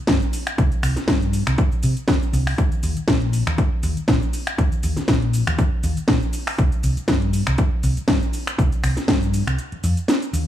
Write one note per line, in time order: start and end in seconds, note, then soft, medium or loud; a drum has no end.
0.07 0.18 G2 loud
0.07 kick loud
0.07 snare loud
0.07 closed hi-hat medium
0.07 shaker soft
0.22 shaker soft
0.33 open hi-hat loud
0.33 shaker medium
0.47 finger snap medium
0.47 closed hi-hat medium
0.47 shaker soft
0.58 0.68 C2 loud
0.58 kick loud
0.58 closed hi-hat medium
0.58 shaker soft
0.72 closed hi-hat soft
0.72 shaker soft
0.83 0.93 C2 medium
0.83 finger snap medium
0.83 open hi-hat loud
0.83 shaker medium
0.96 muted fingered electric bass stroke soft
0.96 snare soft
0.96 closed hi-hat medium
0.96 shaker soft
1.08 1.41 G2 medium
1.08 kick loud
1.08 snare loud
1.08 closed hi-hat medium
1.08 shaker soft
1.22 closed hi-hat soft
1.22 shaker soft
1.33 open hi-hat loud
1.33 shaker medium
1.47 1.55 C2 loud
1.47 finger snap medium
1.47 closed hi-hat soft
1.47 shaker soft
1.58 kick loud
1.58 closed hi-hat medium
1.58 shaker soft
1.72 muted fingered electric bass stroke soft
1.72 shaker soft
1.83 1.93 C3 medium
1.83 open hi-hat loud
1.83 shaker medium
1.97 closed hi-hat medium
1.97 shaker soft
2.08 kick loud
2.08 snare loud
2.08 closed hi-hat medium
2.08 shaker soft
2.22 shaker soft
2.33 2.52 C2 loud
2.33 open hi-hat loud
2.33 shaker medium
2.47 finger snap medium
2.47 open hi-hat medium
2.47 shaker soft
2.58 2.68 D#2 loud
2.58 kick loud
2.58 closed hi-hat medium
2.58 shaker soft
2.72 closed hi-hat soft
2.72 shaker soft
2.83 2.93 D#2 medium
2.83 open hi-hat loud
2.83 shaker medium
2.97 muted fingered electric bass stroke soft
2.97 closed hi-hat medium
2.97 shaker soft
3.08 3.41 A#1 medium
3.08 kick loud
3.08 snare loud
3.08 closed hi-hat medium
3.08 shaker soft
3.22 closed hi-hat soft
3.33 open hi-hat loud
3.33 shaker medium
3.47 3.55 D#2 loud
3.47 finger snap medium
3.47 closed hi-hat soft
3.47 shaker soft
3.58 kick loud
3.58 closed hi-hat medium
3.58 shaker soft
3.83 3.93 D#2 medium
3.83 open hi-hat loud
3.83 shaker medium
3.97 muted fingered electric bass stroke soft
3.97 closed hi-hat medium
3.97 shaker soft
4.08 4.18 A#1 loud
4.08 kick loud
4.08 snare loud
4.08 closed hi-hat medium
4.08 shaker soft
4.22 shaker soft
4.33 open hi-hat loud
4.33 shaker medium
4.47 finger snap medium
4.47 closed hi-hat medium
4.47 shaker soft
4.58 4.68 D#2 loud
4.58 kick loud
4.58 closed hi-hat medium
4.58 shaker soft
4.72 closed hi-hat soft
4.72 shaker soft
4.83 4.93 D#2 medium
4.83 open hi-hat loud
4.83 shaker medium
4.97 muted fingered electric bass stroke soft
4.97 snare soft
4.97 closed hi-hat medium
4.97 shaker soft
5.08 5.41 A#1 medium
5.08 kick loud
5.08 snare loud
5.08 closed hi-hat medium
5.08 shaker soft
5.22 closed hi-hat soft
5.34 open hi-hat loud
5.34 shaker medium
5.47 5.55 D#2 loud
5.47 finger snap medium
5.47 closed hi-hat medium
5.47 shaker soft
5.59 kick loud
5.59 closed hi-hat medium
5.59 shaker soft
5.72 muted fingered electric bass stroke soft
5.83 5.93 D#2 loud
5.83 open hi-hat loud
5.83 shaker medium
5.97 muted fingered electric bass stroke soft
5.97 closed hi-hat medium
5.97 shaker soft
6.08 6.18 A#1 loud
6.08 kick loud
6.08 snare loud
6.08 closed hi-hat medium
6.08 shaker soft
6.22 shaker soft
6.33 open hi-hat loud
6.33 shaker medium
6.47 finger snap medium
6.47 open hi-hat medium
6.47 shaker soft
6.58 6.68 C2 loud
6.58 kick loud
6.58 closed hi-hat medium
6.58 shaker soft
6.72 closed hi-hat soft
6.72 shaker soft
6.83 6.93 C2 medium
6.83 open hi-hat loud
6.83 shaker medium
6.97 muted fingered electric bass stroke soft
6.97 closed hi-hat medium
6.97 shaker soft
7.08 7.41 G2 medium
7.08 kick loud
7.08 snare loud
7.08 closed hi-hat medium
7.08 shaker soft
7.22 closed hi-hat soft
7.33 open hi-hat loud
7.33 shaker medium
7.47 7.55 C2 loud
7.47 finger snap medium
7.47 closed hi-hat medium
7.47 shaker soft
7.58 kick loud
7.58 closed hi-hat medium
7.58 shaker soft
7.83 7.93 C2 medium
7.83 open hi-hat loud
7.83 shaker medium
7.97 muted fingered electric bass stroke soft
7.97 closed hi-hat medium
7.97 shaker soft
8.08 8.18 G2 loud
8.08 kick loud
8.08 snare loud
8.08 closed hi-hat medium
8.08 shaker soft
8.22 shaker soft
8.33 open hi-hat loud
8.33 shaker medium
8.47 finger snap medium
8.47 closed hi-hat medium
8.47 shaker soft
8.58 8.68 C2 loud
8.58 kick loud
8.58 closed hi-hat medium
8.58 shaker soft
8.72 closed hi-hat soft
8.72 shaker soft
8.83 8.93 C2 medium
8.83 finger snap medium
8.83 open hi-hat loud
8.83 shaker medium
8.97 muted fingered electric bass stroke soft
8.97 snare soft
8.97 closed hi-hat medium
8.97 shaker soft
9.08 9.41 G2 medium
9.08 kick loud
9.08 snare loud
9.08 closed hi-hat medium
9.08 shaker soft
9.23 closed hi-hat soft
9.23 shaker soft
9.34 open hi-hat loud
9.34 shaker medium
9.47 9.55 C2 loud
9.47 finger snap medium
9.47 closed hi-hat medium
9.47 shaker soft
9.59 closed hi-hat medium
9.59 shaker soft
9.72 muted fingered electric bass stroke soft
9.72 closed hi-hat soft
9.84 9.93 F2 loud
9.84 open hi-hat loud
9.84 shaker medium
9.97 closed hi-hat medium
9.97 shaker soft
10.08 snare loud
10.08 closed hi-hat medium
10.08 shaker soft
10.22 closed hi-hat soft
10.22 shaker soft
10.33 10.43 D#2 medium
10.33 open hi-hat loud
10.33 shaker medium